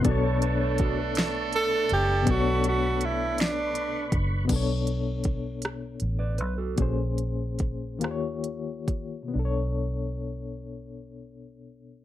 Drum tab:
CC |------|------|x-----|------|
HH |xxxxxx|xxxxxx|xxxxxx|xxxxxx|
SD |---o--|---o--|---r--|---r--|
BD |o-o---|o----o|o-o---|o-o--o|

CC |------|
HH |------|
SD |------|
BD |------|